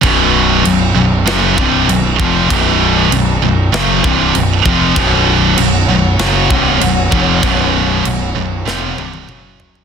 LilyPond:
<<
  \new Staff \with { instrumentName = "String section" } { \time 4/4 \key fis \phrygian \tempo 4 = 97 r1 | r1 | <b cis'' fis''>1~ | <b cis'' fis''>2. <fis cis'>4 | }
  \new Staff \with { instrumentName = "Distorted electric guitar" } { \clef bass \time 4/4 \key fis \phrygian <b,, fis, b,>4 <b,, fis,>8 <b,, fis,>8 <fis, cis fis>8 <c, g, c>8 <b,, fis,>8 <eis, c eis>8 | <b,, fis, b,>4 <b,, fis,>8 <b,, fis,>8 <fis, cis fis>8 <c, g, c>8 <b,, fis,>8 <eis, c eis>8 | <b,, fis, b,>4 <b,, fis,>8 <b,, fis,>8 <fis, cis fis>8 <c, g, c>8 <b,, fis,>8 <eis, c eis>8 | <b,, fis, b,>4 <b,, fis,>8 <b,, fis,>8 <eis, c eis>8 <c, g, c>8 <fis, cis fis>4 | }
  \new Staff \with { instrumentName = "Distorted electric guitar" } { \clef bass \time 4/4 \key fis \phrygian <b,, fis, b,>4 <b,, fis,>8 <b,, fis,>8 <fis, cis fis>8 <c, g, c>8 <b,, fis,>8 <eis, c eis>8 | <b,, fis, b,>4 <b,, fis,>8 <b,, fis,>8 <fis, cis fis>8 <c, g, c>8 <b,, fis,>8 <eis, c eis>8 | <b,, fis, b,>4 <b,, fis,>8 <b,, fis,>8 <fis, cis fis>8 <c, g, c>8 <b,, fis,>8 <eis, c eis>8 | <b,, fis, b,>4 <b,, fis,>8 <b,, fis,>8 <eis, c eis>8 <c, g, c>8 <fis, cis fis>4 | }
  \new Staff \with { instrumentName = "Picked electric bass" } { \clef bass \time 4/4 \key fis \phrygian b,,,4 b,,,8 b,,,8 fis,,8 c,,8 b,,,8 eis,,8 | b,,,4 b,,,8 b,,,8 fis,,8 c,,8 b,,,8 eis,,8 | b,,,4 b,,,8 b,,,8 fis,,8 c,,8 b,,,8 eis,,8 | b,,,4 b,,,8 b,,,8 eis,,8 c,,8 fis,,4 | }
  \new DrumStaff \with { instrumentName = "Drums" } \drummode { \time 4/4 <cymc bd>4 cymc4 <cymc sn>8 bd8 cymc8 bd8 | <cymc bd>4 cymc4 <cymc sn>8 bd8 cymc8 bd8 | <cymc bd>4 cymc4 <cymc sn>8 bd8 cymc8 bd8 | <cymc bd>4 cymc4 sn8 tommh16 tommh16 toml8 tomfh16 tomfh16 | }
>>